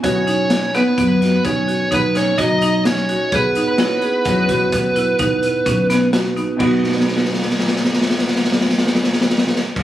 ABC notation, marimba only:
X:1
M:7/4
L:1/8
Q:1/4=128
K:B
V:1 name="Marimba"
F D2 B, B, F D F D D F D2 F | G D E G2 F2 E D2 C B, F D | [B,DFB]12- [B,DFB]2 |]